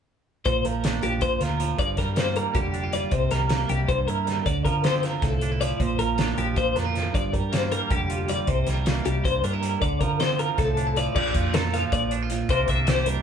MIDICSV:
0, 0, Header, 1, 5, 480
1, 0, Start_track
1, 0, Tempo, 382166
1, 571, Time_signature, 7, 3, 24, 8
1, 16606, End_track
2, 0, Start_track
2, 0, Title_t, "Clean electric guitar"
2, 0, Program_c, 0, 27
2, 574, Note_on_c, 0, 72, 75
2, 816, Note_off_c, 0, 72, 0
2, 816, Note_on_c, 0, 70, 61
2, 1292, Note_off_c, 0, 70, 0
2, 1296, Note_on_c, 0, 67, 64
2, 1530, Note_on_c, 0, 72, 76
2, 1532, Note_off_c, 0, 67, 0
2, 1768, Note_off_c, 0, 72, 0
2, 1768, Note_on_c, 0, 70, 68
2, 2245, Note_off_c, 0, 70, 0
2, 2250, Note_on_c, 0, 74, 70
2, 2485, Note_off_c, 0, 74, 0
2, 2490, Note_on_c, 0, 70, 69
2, 2733, Note_off_c, 0, 70, 0
2, 2733, Note_on_c, 0, 72, 72
2, 2965, Note_off_c, 0, 72, 0
2, 2970, Note_on_c, 0, 70, 66
2, 3202, Note_on_c, 0, 67, 78
2, 3207, Note_off_c, 0, 70, 0
2, 3682, Note_off_c, 0, 67, 0
2, 3684, Note_on_c, 0, 74, 73
2, 3922, Note_off_c, 0, 74, 0
2, 3922, Note_on_c, 0, 72, 80
2, 4157, Note_off_c, 0, 72, 0
2, 4162, Note_on_c, 0, 70, 65
2, 4641, Note_on_c, 0, 67, 66
2, 4642, Note_off_c, 0, 70, 0
2, 4881, Note_off_c, 0, 67, 0
2, 4881, Note_on_c, 0, 72, 80
2, 5114, Note_off_c, 0, 72, 0
2, 5119, Note_on_c, 0, 70, 70
2, 5597, Note_off_c, 0, 70, 0
2, 5602, Note_on_c, 0, 74, 83
2, 5831, Note_off_c, 0, 74, 0
2, 5836, Note_on_c, 0, 70, 68
2, 6077, Note_off_c, 0, 70, 0
2, 6082, Note_on_c, 0, 72, 70
2, 6325, Note_off_c, 0, 72, 0
2, 6325, Note_on_c, 0, 70, 60
2, 6565, Note_off_c, 0, 70, 0
2, 6565, Note_on_c, 0, 69, 83
2, 7039, Note_off_c, 0, 69, 0
2, 7044, Note_on_c, 0, 74, 72
2, 7289, Note_off_c, 0, 74, 0
2, 7289, Note_on_c, 0, 72, 82
2, 7518, Note_off_c, 0, 72, 0
2, 7523, Note_on_c, 0, 70, 67
2, 8002, Note_off_c, 0, 70, 0
2, 8015, Note_on_c, 0, 67, 62
2, 8248, Note_off_c, 0, 67, 0
2, 8261, Note_on_c, 0, 72, 76
2, 8493, Note_off_c, 0, 72, 0
2, 8493, Note_on_c, 0, 70, 67
2, 8968, Note_off_c, 0, 70, 0
2, 8978, Note_on_c, 0, 74, 75
2, 9212, Note_off_c, 0, 74, 0
2, 9212, Note_on_c, 0, 70, 65
2, 9456, Note_off_c, 0, 70, 0
2, 9456, Note_on_c, 0, 72, 72
2, 9689, Note_off_c, 0, 72, 0
2, 9697, Note_on_c, 0, 70, 65
2, 9930, Note_off_c, 0, 70, 0
2, 9940, Note_on_c, 0, 67, 79
2, 10413, Note_off_c, 0, 67, 0
2, 10418, Note_on_c, 0, 74, 74
2, 10653, Note_off_c, 0, 74, 0
2, 10653, Note_on_c, 0, 72, 75
2, 10894, Note_off_c, 0, 72, 0
2, 10894, Note_on_c, 0, 70, 60
2, 11370, Note_off_c, 0, 70, 0
2, 11376, Note_on_c, 0, 67, 62
2, 11611, Note_off_c, 0, 67, 0
2, 11620, Note_on_c, 0, 72, 77
2, 11853, Note_off_c, 0, 72, 0
2, 11859, Note_on_c, 0, 70, 68
2, 12325, Note_off_c, 0, 70, 0
2, 12330, Note_on_c, 0, 74, 76
2, 12563, Note_off_c, 0, 74, 0
2, 12568, Note_on_c, 0, 70, 67
2, 12807, Note_off_c, 0, 70, 0
2, 12812, Note_on_c, 0, 72, 76
2, 13050, Note_off_c, 0, 72, 0
2, 13055, Note_on_c, 0, 70, 58
2, 13292, Note_off_c, 0, 70, 0
2, 13297, Note_on_c, 0, 69, 75
2, 13774, Note_off_c, 0, 69, 0
2, 13782, Note_on_c, 0, 74, 70
2, 13999, Note_off_c, 0, 74, 0
2, 14014, Note_on_c, 0, 74, 83
2, 14492, Note_off_c, 0, 74, 0
2, 14498, Note_on_c, 0, 70, 80
2, 14734, Note_off_c, 0, 70, 0
2, 14741, Note_on_c, 0, 77, 70
2, 14976, Note_off_c, 0, 77, 0
2, 14981, Note_on_c, 0, 74, 80
2, 15216, Note_off_c, 0, 74, 0
2, 15706, Note_on_c, 0, 72, 87
2, 15937, Note_off_c, 0, 72, 0
2, 15942, Note_on_c, 0, 76, 74
2, 16185, Note_off_c, 0, 76, 0
2, 16185, Note_on_c, 0, 72, 78
2, 16417, Note_off_c, 0, 72, 0
2, 16417, Note_on_c, 0, 70, 68
2, 16606, Note_off_c, 0, 70, 0
2, 16606, End_track
3, 0, Start_track
3, 0, Title_t, "Clean electric guitar"
3, 0, Program_c, 1, 27
3, 573, Note_on_c, 1, 46, 66
3, 825, Note_on_c, 1, 53, 60
3, 1071, Note_on_c, 1, 62, 56
3, 1286, Note_off_c, 1, 53, 0
3, 1291, Note_on_c, 1, 53, 50
3, 1522, Note_off_c, 1, 46, 0
3, 1537, Note_on_c, 1, 46, 54
3, 1786, Note_on_c, 1, 65, 53
3, 1991, Note_off_c, 1, 53, 0
3, 2006, Note_on_c, 1, 53, 61
3, 2222, Note_off_c, 1, 46, 0
3, 2227, Note_off_c, 1, 65, 0
3, 2229, Note_off_c, 1, 62, 0
3, 2247, Note_on_c, 1, 43, 65
3, 2479, Note_off_c, 1, 53, 0
3, 2484, Note_on_c, 1, 55, 56
3, 2742, Note_on_c, 1, 58, 56
3, 2965, Note_off_c, 1, 55, 0
3, 2970, Note_on_c, 1, 55, 54
3, 3204, Note_on_c, 1, 50, 60
3, 3437, Note_on_c, 1, 62, 50
3, 3560, Note_off_c, 1, 62, 0
3, 3560, Note_on_c, 1, 65, 48
3, 3674, Note_off_c, 1, 55, 0
3, 3689, Note_on_c, 1, 55, 57
3, 3894, Note_off_c, 1, 50, 0
3, 3897, Note_off_c, 1, 55, 0
3, 3914, Note_on_c, 1, 48, 68
3, 3921, Note_off_c, 1, 65, 0
3, 3923, Note_off_c, 1, 43, 0
3, 4159, Note_on_c, 1, 55, 56
3, 4400, Note_off_c, 1, 58, 0
3, 4415, Note_on_c, 1, 58, 51
3, 4625, Note_off_c, 1, 55, 0
3, 4640, Note_on_c, 1, 55, 56
3, 4877, Note_off_c, 1, 48, 0
3, 4888, Note_on_c, 1, 43, 60
3, 5144, Note_on_c, 1, 64, 49
3, 5342, Note_off_c, 1, 55, 0
3, 5357, Note_on_c, 1, 55, 55
3, 5570, Note_off_c, 1, 55, 0
3, 5584, Note_off_c, 1, 64, 0
3, 5604, Note_off_c, 1, 43, 0
3, 5604, Note_on_c, 1, 50, 64
3, 5608, Note_off_c, 1, 58, 0
3, 5838, Note_on_c, 1, 53, 58
3, 6095, Note_on_c, 1, 60, 50
3, 6320, Note_off_c, 1, 53, 0
3, 6325, Note_on_c, 1, 53, 52
3, 6565, Note_on_c, 1, 45, 55
3, 6810, Note_on_c, 1, 62, 52
3, 6929, Note_off_c, 1, 62, 0
3, 6929, Note_on_c, 1, 64, 44
3, 7034, Note_off_c, 1, 53, 0
3, 7039, Note_on_c, 1, 53, 58
3, 7253, Note_off_c, 1, 50, 0
3, 7254, Note_off_c, 1, 45, 0
3, 7259, Note_off_c, 1, 60, 0
3, 7283, Note_on_c, 1, 46, 68
3, 7285, Note_off_c, 1, 64, 0
3, 7527, Note_off_c, 1, 53, 0
3, 7532, Note_on_c, 1, 53, 59
3, 7782, Note_on_c, 1, 62, 56
3, 7998, Note_off_c, 1, 53, 0
3, 8003, Note_on_c, 1, 53, 55
3, 8226, Note_off_c, 1, 46, 0
3, 8241, Note_on_c, 1, 46, 62
3, 8469, Note_off_c, 1, 62, 0
3, 8484, Note_on_c, 1, 62, 47
3, 8602, Note_off_c, 1, 62, 0
3, 8602, Note_on_c, 1, 65, 45
3, 8706, Note_off_c, 1, 53, 0
3, 8721, Note_on_c, 1, 53, 56
3, 8933, Note_off_c, 1, 46, 0
3, 8952, Note_on_c, 1, 43, 66
3, 8962, Note_off_c, 1, 65, 0
3, 9195, Note_off_c, 1, 53, 0
3, 9200, Note_on_c, 1, 55, 58
3, 9447, Note_on_c, 1, 58, 58
3, 9684, Note_off_c, 1, 55, 0
3, 9689, Note_on_c, 1, 55, 55
3, 9930, Note_on_c, 1, 50, 59
3, 10175, Note_on_c, 1, 65, 54
3, 10389, Note_off_c, 1, 55, 0
3, 10404, Note_on_c, 1, 55, 60
3, 10616, Note_off_c, 1, 55, 0
3, 10619, Note_off_c, 1, 50, 0
3, 10621, Note_off_c, 1, 65, 0
3, 10639, Note_off_c, 1, 43, 0
3, 10645, Note_on_c, 1, 48, 67
3, 10888, Note_on_c, 1, 55, 60
3, 11124, Note_off_c, 1, 58, 0
3, 11139, Note_on_c, 1, 58, 52
3, 11349, Note_off_c, 1, 55, 0
3, 11364, Note_on_c, 1, 55, 52
3, 11606, Note_off_c, 1, 48, 0
3, 11614, Note_on_c, 1, 43, 61
3, 11857, Note_on_c, 1, 62, 54
3, 11973, Note_off_c, 1, 62, 0
3, 11973, Note_on_c, 1, 64, 45
3, 12064, Note_off_c, 1, 55, 0
3, 12079, Note_on_c, 1, 55, 60
3, 12295, Note_off_c, 1, 55, 0
3, 12320, Note_on_c, 1, 50, 65
3, 12330, Note_off_c, 1, 64, 0
3, 12331, Note_off_c, 1, 43, 0
3, 12334, Note_off_c, 1, 58, 0
3, 12573, Note_on_c, 1, 53, 57
3, 12819, Note_on_c, 1, 60, 51
3, 13040, Note_off_c, 1, 53, 0
3, 13055, Note_on_c, 1, 53, 52
3, 13294, Note_on_c, 1, 45, 57
3, 13528, Note_on_c, 1, 62, 51
3, 13650, Note_off_c, 1, 62, 0
3, 13650, Note_on_c, 1, 64, 44
3, 13750, Note_off_c, 1, 53, 0
3, 13765, Note_on_c, 1, 53, 62
3, 13977, Note_off_c, 1, 50, 0
3, 13984, Note_off_c, 1, 45, 0
3, 13986, Note_off_c, 1, 60, 0
3, 14010, Note_off_c, 1, 64, 0
3, 14011, Note_on_c, 1, 46, 72
3, 14022, Note_on_c, 1, 62, 59
3, 14029, Note_on_c, 1, 65, 56
3, 14038, Note_on_c, 1, 67, 66
3, 14253, Note_off_c, 1, 65, 0
3, 14268, Note_on_c, 1, 65, 57
3, 14493, Note_off_c, 1, 67, 0
3, 14498, Note_on_c, 1, 69, 58
3, 14732, Note_off_c, 1, 53, 0
3, 14747, Note_on_c, 1, 53, 57
3, 15213, Note_off_c, 1, 65, 0
3, 15218, Note_off_c, 1, 62, 0
3, 15218, Note_on_c, 1, 62, 54
3, 15355, Note_off_c, 1, 62, 0
3, 15355, Note_on_c, 1, 65, 47
3, 15451, Note_off_c, 1, 46, 0
3, 15466, Note_on_c, 1, 46, 62
3, 15666, Note_off_c, 1, 69, 0
3, 15669, Note_off_c, 1, 46, 0
3, 15699, Note_off_c, 1, 53, 0
3, 15703, Note_off_c, 1, 65, 0
3, 15703, Note_on_c, 1, 48, 70
3, 15710, Note_on_c, 1, 58, 63
3, 15722, Note_on_c, 1, 62, 60
3, 15733, Note_on_c, 1, 70, 66
3, 15945, Note_off_c, 1, 62, 0
3, 15950, Note_on_c, 1, 62, 62
3, 16186, Note_off_c, 1, 70, 0
3, 16191, Note_on_c, 1, 67, 60
3, 16415, Note_on_c, 1, 55, 59
3, 16606, Note_off_c, 1, 48, 0
3, 16606, Note_off_c, 1, 55, 0
3, 16606, Note_off_c, 1, 58, 0
3, 16606, Note_off_c, 1, 62, 0
3, 16606, Note_off_c, 1, 67, 0
3, 16606, End_track
4, 0, Start_track
4, 0, Title_t, "Fingered electric bass"
4, 0, Program_c, 2, 33
4, 576, Note_on_c, 2, 34, 86
4, 776, Note_off_c, 2, 34, 0
4, 815, Note_on_c, 2, 34, 72
4, 1217, Note_off_c, 2, 34, 0
4, 1292, Note_on_c, 2, 34, 87
4, 1493, Note_off_c, 2, 34, 0
4, 1526, Note_on_c, 2, 34, 75
4, 1729, Note_off_c, 2, 34, 0
4, 1754, Note_on_c, 2, 38, 65
4, 2164, Note_off_c, 2, 38, 0
4, 2243, Note_on_c, 2, 31, 86
4, 2483, Note_on_c, 2, 43, 71
4, 2502, Note_off_c, 2, 31, 0
4, 3090, Note_off_c, 2, 43, 0
4, 3203, Note_on_c, 2, 29, 78
4, 3809, Note_off_c, 2, 29, 0
4, 3918, Note_on_c, 2, 36, 88
4, 4122, Note_off_c, 2, 36, 0
4, 4167, Note_on_c, 2, 36, 79
4, 4570, Note_off_c, 2, 36, 0
4, 4643, Note_on_c, 2, 36, 87
4, 4844, Note_off_c, 2, 36, 0
4, 4883, Note_on_c, 2, 36, 84
4, 5084, Note_off_c, 2, 36, 0
4, 5127, Note_on_c, 2, 43, 69
4, 5529, Note_off_c, 2, 43, 0
4, 5601, Note_on_c, 2, 38, 91
4, 5840, Note_on_c, 2, 50, 75
4, 5859, Note_off_c, 2, 38, 0
4, 6447, Note_off_c, 2, 50, 0
4, 6562, Note_on_c, 2, 36, 82
4, 7169, Note_off_c, 2, 36, 0
4, 7282, Note_on_c, 2, 34, 89
4, 7484, Note_off_c, 2, 34, 0
4, 7538, Note_on_c, 2, 34, 73
4, 7936, Note_off_c, 2, 34, 0
4, 8009, Note_on_c, 2, 34, 90
4, 8208, Note_off_c, 2, 34, 0
4, 8242, Note_on_c, 2, 34, 79
4, 8444, Note_off_c, 2, 34, 0
4, 8496, Note_on_c, 2, 41, 67
4, 8895, Note_off_c, 2, 41, 0
4, 8973, Note_on_c, 2, 31, 86
4, 9211, Note_on_c, 2, 43, 78
4, 9230, Note_off_c, 2, 31, 0
4, 9815, Note_off_c, 2, 43, 0
4, 9931, Note_on_c, 2, 29, 76
4, 10536, Note_off_c, 2, 29, 0
4, 10648, Note_on_c, 2, 36, 94
4, 10849, Note_off_c, 2, 36, 0
4, 10895, Note_on_c, 2, 36, 80
4, 11296, Note_off_c, 2, 36, 0
4, 11373, Note_on_c, 2, 36, 85
4, 11572, Note_off_c, 2, 36, 0
4, 11618, Note_on_c, 2, 36, 82
4, 11816, Note_off_c, 2, 36, 0
4, 11845, Note_on_c, 2, 43, 75
4, 12251, Note_off_c, 2, 43, 0
4, 12328, Note_on_c, 2, 38, 91
4, 12569, Note_on_c, 2, 50, 78
4, 12588, Note_off_c, 2, 38, 0
4, 13176, Note_off_c, 2, 50, 0
4, 13293, Note_on_c, 2, 36, 77
4, 13899, Note_off_c, 2, 36, 0
4, 14009, Note_on_c, 2, 34, 86
4, 14212, Note_off_c, 2, 34, 0
4, 14247, Note_on_c, 2, 41, 86
4, 14855, Note_off_c, 2, 41, 0
4, 14969, Note_on_c, 2, 34, 96
4, 15576, Note_off_c, 2, 34, 0
4, 15693, Note_on_c, 2, 36, 101
4, 15894, Note_off_c, 2, 36, 0
4, 15925, Note_on_c, 2, 36, 88
4, 16534, Note_off_c, 2, 36, 0
4, 16606, End_track
5, 0, Start_track
5, 0, Title_t, "Drums"
5, 568, Note_on_c, 9, 42, 68
5, 572, Note_on_c, 9, 36, 92
5, 694, Note_off_c, 9, 42, 0
5, 698, Note_off_c, 9, 36, 0
5, 815, Note_on_c, 9, 42, 57
5, 940, Note_off_c, 9, 42, 0
5, 1052, Note_on_c, 9, 42, 70
5, 1064, Note_on_c, 9, 38, 101
5, 1177, Note_off_c, 9, 42, 0
5, 1190, Note_off_c, 9, 38, 0
5, 1289, Note_on_c, 9, 42, 52
5, 1415, Note_off_c, 9, 42, 0
5, 1521, Note_on_c, 9, 42, 75
5, 1527, Note_on_c, 9, 36, 90
5, 1647, Note_off_c, 9, 42, 0
5, 1652, Note_off_c, 9, 36, 0
5, 1767, Note_on_c, 9, 42, 57
5, 1780, Note_on_c, 9, 38, 31
5, 1893, Note_off_c, 9, 42, 0
5, 1905, Note_off_c, 9, 38, 0
5, 2008, Note_on_c, 9, 42, 57
5, 2134, Note_off_c, 9, 42, 0
5, 2242, Note_on_c, 9, 36, 89
5, 2242, Note_on_c, 9, 42, 72
5, 2368, Note_off_c, 9, 36, 0
5, 2368, Note_off_c, 9, 42, 0
5, 2475, Note_on_c, 9, 42, 54
5, 2480, Note_on_c, 9, 36, 69
5, 2488, Note_on_c, 9, 38, 30
5, 2601, Note_off_c, 9, 42, 0
5, 2606, Note_off_c, 9, 36, 0
5, 2613, Note_off_c, 9, 38, 0
5, 2715, Note_on_c, 9, 42, 77
5, 2727, Note_on_c, 9, 38, 100
5, 2840, Note_off_c, 9, 42, 0
5, 2853, Note_off_c, 9, 38, 0
5, 2961, Note_on_c, 9, 42, 51
5, 3086, Note_off_c, 9, 42, 0
5, 3198, Note_on_c, 9, 42, 72
5, 3200, Note_on_c, 9, 36, 97
5, 3323, Note_off_c, 9, 42, 0
5, 3326, Note_off_c, 9, 36, 0
5, 3439, Note_on_c, 9, 42, 49
5, 3565, Note_off_c, 9, 42, 0
5, 3676, Note_on_c, 9, 42, 52
5, 3802, Note_off_c, 9, 42, 0
5, 3912, Note_on_c, 9, 42, 69
5, 3916, Note_on_c, 9, 36, 89
5, 4037, Note_off_c, 9, 42, 0
5, 4042, Note_off_c, 9, 36, 0
5, 4154, Note_on_c, 9, 42, 51
5, 4166, Note_on_c, 9, 38, 32
5, 4279, Note_off_c, 9, 42, 0
5, 4292, Note_off_c, 9, 38, 0
5, 4389, Note_on_c, 9, 42, 70
5, 4402, Note_on_c, 9, 38, 102
5, 4515, Note_off_c, 9, 42, 0
5, 4527, Note_off_c, 9, 38, 0
5, 4637, Note_on_c, 9, 42, 52
5, 4762, Note_off_c, 9, 42, 0
5, 4880, Note_on_c, 9, 36, 93
5, 4881, Note_on_c, 9, 42, 75
5, 5006, Note_off_c, 9, 36, 0
5, 5006, Note_off_c, 9, 42, 0
5, 5126, Note_on_c, 9, 42, 54
5, 5252, Note_off_c, 9, 42, 0
5, 5365, Note_on_c, 9, 42, 56
5, 5378, Note_on_c, 9, 38, 29
5, 5491, Note_off_c, 9, 42, 0
5, 5503, Note_off_c, 9, 38, 0
5, 5600, Note_on_c, 9, 42, 77
5, 5601, Note_on_c, 9, 36, 88
5, 5725, Note_off_c, 9, 42, 0
5, 5727, Note_off_c, 9, 36, 0
5, 5841, Note_on_c, 9, 36, 73
5, 5846, Note_on_c, 9, 42, 60
5, 5967, Note_off_c, 9, 36, 0
5, 5972, Note_off_c, 9, 42, 0
5, 6076, Note_on_c, 9, 42, 75
5, 6089, Note_on_c, 9, 38, 99
5, 6202, Note_off_c, 9, 42, 0
5, 6214, Note_off_c, 9, 38, 0
5, 6318, Note_on_c, 9, 42, 55
5, 6331, Note_on_c, 9, 38, 32
5, 6444, Note_off_c, 9, 42, 0
5, 6456, Note_off_c, 9, 38, 0
5, 6559, Note_on_c, 9, 42, 79
5, 6561, Note_on_c, 9, 36, 92
5, 6571, Note_on_c, 9, 38, 30
5, 6684, Note_off_c, 9, 42, 0
5, 6687, Note_off_c, 9, 36, 0
5, 6697, Note_off_c, 9, 38, 0
5, 6800, Note_on_c, 9, 42, 55
5, 6926, Note_off_c, 9, 42, 0
5, 7047, Note_on_c, 9, 42, 55
5, 7172, Note_off_c, 9, 42, 0
5, 7284, Note_on_c, 9, 36, 97
5, 7285, Note_on_c, 9, 42, 68
5, 7409, Note_off_c, 9, 36, 0
5, 7410, Note_off_c, 9, 42, 0
5, 7524, Note_on_c, 9, 42, 54
5, 7649, Note_off_c, 9, 42, 0
5, 7761, Note_on_c, 9, 42, 65
5, 7774, Note_on_c, 9, 38, 98
5, 7887, Note_off_c, 9, 42, 0
5, 7899, Note_off_c, 9, 38, 0
5, 8008, Note_on_c, 9, 42, 48
5, 8134, Note_off_c, 9, 42, 0
5, 8244, Note_on_c, 9, 42, 70
5, 8245, Note_on_c, 9, 36, 97
5, 8370, Note_off_c, 9, 36, 0
5, 8370, Note_off_c, 9, 42, 0
5, 8491, Note_on_c, 9, 42, 48
5, 8503, Note_on_c, 9, 38, 33
5, 8617, Note_off_c, 9, 42, 0
5, 8629, Note_off_c, 9, 38, 0
5, 8736, Note_on_c, 9, 42, 47
5, 8748, Note_on_c, 9, 38, 30
5, 8861, Note_off_c, 9, 42, 0
5, 8874, Note_off_c, 9, 38, 0
5, 8971, Note_on_c, 9, 36, 88
5, 8976, Note_on_c, 9, 42, 72
5, 9097, Note_off_c, 9, 36, 0
5, 9102, Note_off_c, 9, 42, 0
5, 9212, Note_on_c, 9, 36, 67
5, 9219, Note_on_c, 9, 42, 58
5, 9338, Note_off_c, 9, 36, 0
5, 9344, Note_off_c, 9, 42, 0
5, 9453, Note_on_c, 9, 42, 76
5, 9466, Note_on_c, 9, 38, 93
5, 9579, Note_off_c, 9, 42, 0
5, 9591, Note_off_c, 9, 38, 0
5, 9693, Note_on_c, 9, 42, 58
5, 9818, Note_off_c, 9, 42, 0
5, 9929, Note_on_c, 9, 36, 98
5, 9929, Note_on_c, 9, 42, 80
5, 10055, Note_off_c, 9, 36, 0
5, 10055, Note_off_c, 9, 42, 0
5, 10171, Note_on_c, 9, 42, 56
5, 10297, Note_off_c, 9, 42, 0
5, 10407, Note_on_c, 9, 42, 57
5, 10532, Note_off_c, 9, 42, 0
5, 10643, Note_on_c, 9, 42, 73
5, 10647, Note_on_c, 9, 36, 86
5, 10768, Note_off_c, 9, 42, 0
5, 10773, Note_off_c, 9, 36, 0
5, 10885, Note_on_c, 9, 42, 58
5, 10897, Note_on_c, 9, 38, 31
5, 11010, Note_off_c, 9, 42, 0
5, 11023, Note_off_c, 9, 38, 0
5, 11128, Note_on_c, 9, 42, 74
5, 11140, Note_on_c, 9, 38, 100
5, 11253, Note_off_c, 9, 42, 0
5, 11266, Note_off_c, 9, 38, 0
5, 11372, Note_on_c, 9, 42, 53
5, 11498, Note_off_c, 9, 42, 0
5, 11612, Note_on_c, 9, 36, 86
5, 11619, Note_on_c, 9, 42, 75
5, 11737, Note_off_c, 9, 36, 0
5, 11744, Note_off_c, 9, 42, 0
5, 11854, Note_on_c, 9, 42, 52
5, 11980, Note_off_c, 9, 42, 0
5, 12091, Note_on_c, 9, 42, 53
5, 12217, Note_off_c, 9, 42, 0
5, 12329, Note_on_c, 9, 42, 63
5, 12330, Note_on_c, 9, 36, 92
5, 12454, Note_off_c, 9, 42, 0
5, 12455, Note_off_c, 9, 36, 0
5, 12568, Note_on_c, 9, 36, 69
5, 12569, Note_on_c, 9, 42, 51
5, 12694, Note_off_c, 9, 36, 0
5, 12695, Note_off_c, 9, 42, 0
5, 12809, Note_on_c, 9, 42, 68
5, 12821, Note_on_c, 9, 38, 100
5, 12934, Note_off_c, 9, 42, 0
5, 12947, Note_off_c, 9, 38, 0
5, 13052, Note_on_c, 9, 42, 49
5, 13178, Note_off_c, 9, 42, 0
5, 13289, Note_on_c, 9, 42, 72
5, 13290, Note_on_c, 9, 36, 93
5, 13301, Note_on_c, 9, 38, 30
5, 13414, Note_off_c, 9, 42, 0
5, 13416, Note_off_c, 9, 36, 0
5, 13427, Note_off_c, 9, 38, 0
5, 13529, Note_on_c, 9, 42, 54
5, 13655, Note_off_c, 9, 42, 0
5, 13772, Note_on_c, 9, 42, 53
5, 13897, Note_off_c, 9, 42, 0
5, 14011, Note_on_c, 9, 49, 100
5, 14013, Note_on_c, 9, 36, 95
5, 14137, Note_off_c, 9, 49, 0
5, 14138, Note_off_c, 9, 36, 0
5, 14249, Note_on_c, 9, 42, 67
5, 14252, Note_on_c, 9, 36, 76
5, 14374, Note_off_c, 9, 42, 0
5, 14377, Note_off_c, 9, 36, 0
5, 14492, Note_on_c, 9, 42, 87
5, 14505, Note_on_c, 9, 38, 111
5, 14618, Note_off_c, 9, 42, 0
5, 14630, Note_off_c, 9, 38, 0
5, 14741, Note_on_c, 9, 42, 66
5, 14754, Note_on_c, 9, 38, 32
5, 14867, Note_off_c, 9, 42, 0
5, 14879, Note_off_c, 9, 38, 0
5, 14973, Note_on_c, 9, 42, 90
5, 14974, Note_on_c, 9, 36, 99
5, 15099, Note_off_c, 9, 36, 0
5, 15099, Note_off_c, 9, 42, 0
5, 15211, Note_on_c, 9, 42, 63
5, 15337, Note_off_c, 9, 42, 0
5, 15446, Note_on_c, 9, 42, 59
5, 15572, Note_off_c, 9, 42, 0
5, 15688, Note_on_c, 9, 42, 78
5, 15689, Note_on_c, 9, 36, 96
5, 15814, Note_off_c, 9, 42, 0
5, 15815, Note_off_c, 9, 36, 0
5, 15923, Note_on_c, 9, 42, 67
5, 15928, Note_on_c, 9, 36, 80
5, 16049, Note_off_c, 9, 42, 0
5, 16054, Note_off_c, 9, 36, 0
5, 16164, Note_on_c, 9, 42, 81
5, 16176, Note_on_c, 9, 38, 108
5, 16289, Note_off_c, 9, 42, 0
5, 16302, Note_off_c, 9, 38, 0
5, 16403, Note_on_c, 9, 42, 66
5, 16529, Note_off_c, 9, 42, 0
5, 16606, End_track
0, 0, End_of_file